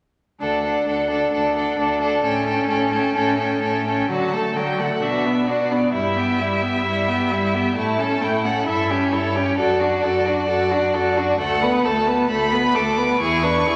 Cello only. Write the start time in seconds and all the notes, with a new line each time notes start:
0.41 D2
0.87 D2
1.33 D2
1.78 D2
2.24 A2
2.69 A2
3.15 A2
3.62 A2
4.10 D3
4.56 D3
5.02 B2
5.48 B2
5.94 G2
6.40 G2
6.85 G2
7.31 G2
7.77 A2
8.21 A2
8.67 G2
9.12 G2
9.58 F#2
10.04 F#2
10.49 F#2
10.94 F#2
11.39 D2
11.85 D2
12.31 D2
12.76 D2
13.21 E2
13.67 E2